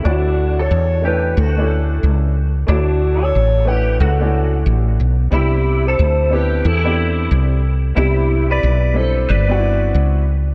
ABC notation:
X:1
M:4/4
L:1/16
Q:"Swing 16ths" 1/4=91
K:D
V:1 name="Alto saxophone"
F3 c3 B2 A4 z4 | F3 c3 B2 A4 z4 | G3 =c3 B2 A4 z4 | G3 d3 =c2 d6 z2 |]
V:2 name="Clean electric guitar"
D3 A3 G2 F4 z4 | D3 A3 G2 F4 z4 | E3 A3 G2 E4 z4 | E3 B3 A2 B6 z2 |]
V:3 name="Upright piano"
[A,DEFc]4 z2 [A,CDEA]2 z [A,CDEGA]4- [A,CDEGA] z2 | [A,DEAc]4 z2 [A,CDEf]2 z [A,CDEA]4- [A,CDEA] z2 | [B,=CDEG]4 z2 [B,CDEG]2 z [B,CDEG]4- [B,CDEG] z2 | [B,=CDEG]4 z2 [G,CDEA]2 z [B,CD_E=EF]4- [B,CD_E=EF] z2 |]
V:4 name="Fretless electric bass" clef=bass
D,,4 E,,4 D,,4 C,,4 | D,,4 A,,,4 C,,4 A,,,2 B,,,2 | =C,,4 D,,4 E,,4 C,,4 | =C,,4 B,,,4 G,,,4 ^C,,4 |]